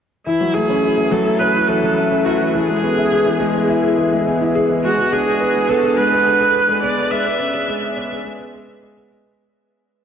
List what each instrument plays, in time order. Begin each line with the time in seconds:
0.26 grand piano E3, viola E4
0.41 grand piano F#3
0.54 grand piano A3, viola G#4
0.69 grand piano C#4
0.83 grand piano E4
0.97 grand piano E3
1.11 grand piano F#3, viola A4
1.26 grand piano A3
1.39 grand piano C#4, viola B4
1.55 grand piano E4
1.67 grand piano E3, viola A4
1.83 grand piano F#3
1.97 grand piano A3
2.11 grand piano C#4
2.25 grand piano E4, viola F#4
2.40 grand piano E3
2.53 grand piano E3, viola G#4
2.69 grand piano G#3
2.83 grand piano B3
2.98 grand piano E4
3.11 grand piano G#4
3.26 grand piano E3
3.40 grand piano G#3
3.55 grand piano B3
3.69 grand piano E4
3.84 grand piano G#4
3.98 grand piano E3
4.12 grand piano G#3
4.27 grand piano B3
4.41 grand piano E4
4.55 grand piano G#4
4.70 grand piano E3
4.83 grand piano G#3, viola F#4
4.98 grand piano B3
5.12 grand piano D4, viola G#4
5.26 grand piano G#4
5.41 grand piano B4
5.55 grand piano G#3
5.69 grand piano B3, viola A4
5.83 grand piano D4
5.97 grand piano G#3, viola B4
6.12 grand piano B3
6.26 grand piano D4
6.40 grand piano G#4
6.54 grand piano B4
6.69 grand piano G#3
6.83 grand piano B3, viola D5
6.97 grand piano D4
7.11 grand piano G#3, viola E5
7.25 grand piano B3
7.40 grand piano C#4
7.54 grand piano G#4
7.68 grand piano G#3
7.82 grand piano B3
7.97 grand piano C#4
8.11 grand piano G#4
8.25 grand piano G#3
8.39 grand piano B3
8.54 grand piano G#3
8.68 grand piano B3
8.83 grand piano G#3
8.97 grand piano B3
9.11 grand piano G#3
9.26 grand piano B3